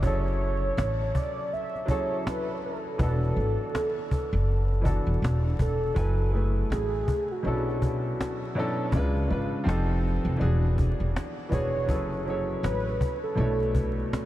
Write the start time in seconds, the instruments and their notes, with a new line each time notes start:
0.02 upright bass F#1, upright piano F#3 C#4 E4 G#4, soft synth lead C#5, cajon bass
0.07 upright piano A4
0.27 cajon slap
0.42 cajon slap
0.77 upright bass A1, cajon slap
1.02 cajon slap
1.15 soft synth lead D5, cajon bass
1.53 soft synth lead E5, cajon slap
1.75 cajon slap
1.86 upright piano F#3 C#4 E4 G#4, cajon bass
1.91 upright piano A4, soft synth lead C#5
2.27 soft synth lead B4, cajon slap
2.48 cajon slap
2.62 soft synth lead A4, cajon slap
2.98 upright bass E1, upright piano E3 B3 D4 F#4, cajon bass
3.03 upright piano A4
3.23 cajon slap
3.37 upright bass G#1, cajon slap
3.75 cajon slap
3.99 cajon slap
4.11 cajon bass
4.33 upright bass F#1, cajon slap
4.51 cajon slap
4.72 cajon slap
4.81 upright piano E3 B3 D4 F#4, cajon bass
4.86 upright piano A4
5.07 upright bass E1, cajon slap
5.22 upright bass E1, cajon slap
5.46 cajon slap
5.59 upright bass E1, soft synth lead A4, cajon bass
5.94 upright bass F#1, upright piano F#3 E4 A4 G#5, cajon bass
5.99 upright piano B4
6.20 cajon slap
6.31 upright piano F#3 A3 E4 G#4
6.35 upright piano B4, cajon slap
6.70 upright bass A1, soft synth lead G#4, cajon slap
6.95 cajon slap
7.08 cajon bass
7.31 soft synth lead F#4
7.42 upright bass B1, upright piano B2 F#3 C#4 D4 E4
7.47 upright piano A4, cajon slap
7.69 cajon slap
7.82 cajon bass
8.21 cajon slap
8.42 cajon slap
8.55 upright piano B2 F#3 C#4 D4 E4, cajon slap
8.59 upright piano A4
8.92 upright bass C#2, upright piano C#3 G#3 D4 F4, cajon bass
8.97 upright piano B4
9.17 cajon slap
9.28 upright bass G#1, upright piano C#3 G#3 D4 F4
9.32 upright piano B4, cajon slap
9.64 upright bass F1, upright piano F3 C4 D#4 G4
9.68 upright piano A4, cajon slap
9.92 cajon slap
10.07 cajon slap
10.25 upright bass F1
10.37 upright bass E1, upright piano E3 B3 D4 F#4
10.42 upright piano G#4, cajon slap
10.65 cajon slap
10.78 cajon bass
11.00 upright bass E1
11.16 cajon slap
11.38 cajon slap
11.49 upright bass E1, upright piano E3 B3 D4 F#4, cajon bass
11.53 upright piano G#4, soft synth lead C#5
11.86 upright bass F#1, upright piano F#3 C#4 E4 G#4 A4, cajon bass
11.91 upright piano B4
12.13 cajon slap
12.25 upright piano F#3 C#4 E4 G#4 A4, cajon slap
12.30 upright piano C#5
12.63 upright bass A1, soft synth lead B4, cajon slap
12.87 cajon slap
13.01 cajon bass
13.24 soft synth lead A4
13.35 upright bass B1, upright piano B2 A3 D4 E4
13.39 upright piano C#5, cajon slap
13.62 cajon slap
13.75 cajon bass
14.13 cajon slap